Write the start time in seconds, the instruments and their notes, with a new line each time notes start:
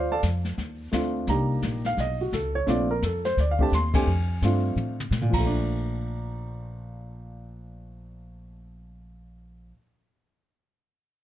Already playing: upright bass D2, grand piano F4 C5 D5 F5
0.12 grand piano A4 D5 F5 A5
0.23 upright bass F2, kick, snare, hi-hat pedal
0.45 snare
0.58 upright bass D#2, brush sweep, kick, snare
0.92 upright bass D2, grand piano A3 C4 D4 F4, kick, snare, hi-hat pedal
1.27 upright bass C2, grand piano A#3 D4 D#4 G4 A#5, brush sweep, kick, snare
1.63 upright bass A#1, kick, snare, hi-hat pedal
1.85 grand piano F5, snare
1.97 upright bass B1, grand piano D#5, brush sweep, kick, snare
2.21 grand piano F#4
2.32 upright bass C#2, grand piano A4, kick, snare, hi-hat pedal
2.55 grand piano C#5
2.66 upright bass A#1, grand piano A3 C4 D4 F4 D5, brush sweep, kick, snare
2.91 grand piano A#4
3.02 upright bass F2, grand piano A4, kick, snare, hi-hat pedal
3.25 grand piano C5, snare
3.37 upright bass D2, grand piano D5, brush sweep, kick, snare
3.51 grand piano F5
3.59 grand piano A3 C4 D4 G4 A5, kick
3.72 upright bass D#2, grand piano C6, kick, snare, hi-hat pedal
3.94 grand piano A3 C4 D4 G4 G#5, kick, crash
4.07 upright bass F2, brush sweep
4.42 upright bass G2, grand piano A3 C4 D4 F4, kick, snare, hi-hat pedal
4.76 upright bass A2, high tom
5.00 mid tom
5.11 upright bass A#2, snare, hi-hat pedal
5.21 upright bass A2, grand piano A#2
5.30 upright bass A#1, grand piano F3, kick, crash
5.34 grand piano A#5
5.38 grand piano A3
5.46 grand piano D4